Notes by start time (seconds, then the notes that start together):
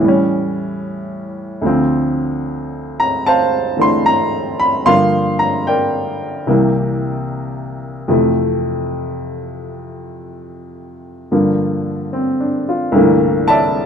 Already playing: A2
0.01 E3 G3
0.08 C#4
1.61 D2 D3 F3
1.66 C4
3.00 A#5
3.26 C5 F5 A5
3.77 E3 A3 D4
3.81 C6
4.06 A#5
4.60 B5
4.86 G2 D3 F3 A#3 F5 C6
5.39 A#5
5.67 A#4 D5 G5
6.47 C2 C3 E3 A#3
8.08 F2 C3 E3 A3
11.32 G2 D3 F3 A#3
12.13 C4
12.40 D4
12.69 F4
12.92 C2 G2 D3 E3
12.96 A3 A#3
13.48 D5 E5 A5